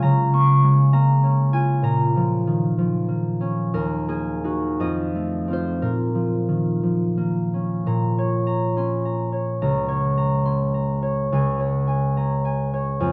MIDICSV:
0, 0, Header, 1, 2, 480
1, 0, Start_track
1, 0, Key_signature, -5, "minor"
1, 0, Tempo, 616650
1, 17, Time_signature, 6, 3, 24, 8
1, 2897, Tempo, 690449
1, 5777, Tempo, 587659
1, 6737, Tempo, 563910
1, 10211, End_track
2, 0, Start_track
2, 0, Title_t, "Harp"
2, 0, Program_c, 0, 46
2, 0, Note_on_c, 0, 61, 41
2, 0, Note_on_c, 0, 65, 46
2, 0, Note_on_c, 0, 77, 67
2, 19, Note_on_c, 0, 82, 78
2, 25, Note_on_c, 0, 49, 49
2, 259, Note_on_c, 0, 58, 42
2, 262, Note_on_c, 0, 85, 76
2, 490, Note_on_c, 0, 56, 37
2, 714, Note_off_c, 0, 82, 0
2, 716, Note_off_c, 0, 58, 0
2, 724, Note_on_c, 0, 58, 47
2, 724, Note_on_c, 0, 82, 81
2, 890, Note_off_c, 0, 56, 0
2, 947, Note_off_c, 0, 61, 0
2, 956, Note_on_c, 0, 61, 45
2, 1184, Note_off_c, 0, 65, 0
2, 1192, Note_on_c, 0, 65, 47
2, 1192, Note_on_c, 0, 80, 81
2, 1421, Note_off_c, 0, 82, 0
2, 1421, Note_on_c, 0, 46, 55
2, 1431, Note_on_c, 0, 82, 81
2, 1467, Note_off_c, 0, 49, 0
2, 1606, Note_off_c, 0, 80, 0
2, 1683, Note_on_c, 0, 53, 45
2, 1924, Note_on_c, 0, 51, 37
2, 2157, Note_off_c, 0, 53, 0
2, 2166, Note_on_c, 0, 53, 43
2, 2338, Note_off_c, 0, 51, 0
2, 2369, Note_off_c, 0, 77, 0
2, 2391, Note_off_c, 0, 58, 0
2, 2401, Note_on_c, 0, 58, 40
2, 2642, Note_off_c, 0, 61, 0
2, 2651, Note_on_c, 0, 61, 49
2, 2904, Note_off_c, 0, 46, 0
2, 2907, Note_on_c, 0, 39, 55
2, 2910, Note_on_c, 0, 70, 71
2, 2911, Note_off_c, 0, 65, 0
2, 2914, Note_off_c, 0, 53, 0
2, 2915, Note_off_c, 0, 61, 0
2, 2919, Note_off_c, 0, 85, 0
2, 3142, Note_off_c, 0, 58, 0
2, 3148, Note_on_c, 0, 58, 46
2, 3151, Note_on_c, 0, 68, 65
2, 3398, Note_on_c, 0, 63, 42
2, 3403, Note_on_c, 0, 66, 47
2, 3644, Note_off_c, 0, 82, 0
2, 3646, Note_on_c, 0, 41, 54
2, 3651, Note_on_c, 0, 75, 81
2, 3656, Note_off_c, 0, 39, 0
2, 3656, Note_off_c, 0, 70, 0
2, 3660, Note_off_c, 0, 68, 0
2, 3661, Note_off_c, 0, 58, 0
2, 3662, Note_off_c, 0, 66, 0
2, 3891, Note_on_c, 0, 57, 36
2, 4118, Note_on_c, 0, 60, 38
2, 4136, Note_on_c, 0, 65, 43
2, 4153, Note_on_c, 0, 72, 74
2, 4356, Note_on_c, 0, 46, 47
2, 4356, Note_on_c, 0, 70, 62
2, 4373, Note_off_c, 0, 41, 0
2, 4375, Note_off_c, 0, 57, 0
2, 4376, Note_off_c, 0, 63, 0
2, 4376, Note_off_c, 0, 75, 0
2, 4379, Note_off_c, 0, 72, 0
2, 4380, Note_off_c, 0, 60, 0
2, 4585, Note_on_c, 0, 53, 38
2, 4818, Note_on_c, 0, 51, 37
2, 5052, Note_off_c, 0, 53, 0
2, 5060, Note_on_c, 0, 53, 34
2, 5225, Note_off_c, 0, 51, 0
2, 5297, Note_on_c, 0, 58, 36
2, 5549, Note_on_c, 0, 61, 35
2, 5771, Note_off_c, 0, 46, 0
2, 5778, Note_on_c, 0, 46, 54
2, 5781, Note_on_c, 0, 82, 55
2, 6039, Note_on_c, 0, 73, 54
2, 6260, Note_off_c, 0, 82, 0
2, 6270, Note_on_c, 0, 82, 55
2, 6505, Note_off_c, 0, 61, 0
2, 6515, Note_on_c, 0, 61, 47
2, 6520, Note_on_c, 0, 84, 44
2, 6739, Note_off_c, 0, 82, 0
2, 6749, Note_on_c, 0, 82, 52
2, 6918, Note_off_c, 0, 84, 0
2, 6969, Note_off_c, 0, 73, 0
2, 6979, Note_on_c, 0, 73, 49
2, 7047, Note_off_c, 0, 65, 0
2, 7218, Note_off_c, 0, 82, 0
2, 7230, Note_on_c, 0, 37, 54
2, 7230, Note_on_c, 0, 82, 50
2, 7238, Note_off_c, 0, 46, 0
2, 7317, Note_off_c, 0, 70, 0
2, 7447, Note_off_c, 0, 73, 0
2, 7457, Note_on_c, 0, 73, 50
2, 7694, Note_off_c, 0, 82, 0
2, 7704, Note_on_c, 0, 82, 57
2, 7937, Note_off_c, 0, 61, 0
2, 7941, Note_on_c, 0, 84, 42
2, 7947, Note_on_c, 0, 61, 43
2, 8175, Note_off_c, 0, 82, 0
2, 8178, Note_off_c, 0, 53, 0
2, 8186, Note_on_c, 0, 82, 47
2, 8352, Note_off_c, 0, 84, 0
2, 8417, Note_off_c, 0, 73, 0
2, 8427, Note_on_c, 0, 73, 56
2, 8469, Note_off_c, 0, 58, 0
2, 8674, Note_off_c, 0, 37, 0
2, 8681, Note_on_c, 0, 37, 58
2, 8685, Note_off_c, 0, 82, 0
2, 8686, Note_on_c, 0, 80, 52
2, 8904, Note_off_c, 0, 73, 0
2, 8914, Note_on_c, 0, 73, 52
2, 9138, Note_off_c, 0, 80, 0
2, 9149, Note_on_c, 0, 80, 56
2, 9395, Note_off_c, 0, 61, 0
2, 9401, Note_on_c, 0, 82, 49
2, 9405, Note_on_c, 0, 61, 49
2, 9629, Note_off_c, 0, 80, 0
2, 9640, Note_on_c, 0, 80, 54
2, 9803, Note_off_c, 0, 82, 0
2, 9873, Note_off_c, 0, 73, 0
2, 9883, Note_on_c, 0, 73, 55
2, 10100, Note_off_c, 0, 80, 0
2, 10111, Note_on_c, 0, 41, 63
2, 10112, Note_on_c, 0, 80, 56
2, 10131, Note_off_c, 0, 37, 0
2, 10211, Note_off_c, 0, 41, 0
2, 10211, Note_off_c, 0, 61, 0
2, 10211, Note_off_c, 0, 73, 0
2, 10211, Note_off_c, 0, 80, 0
2, 10211, End_track
0, 0, End_of_file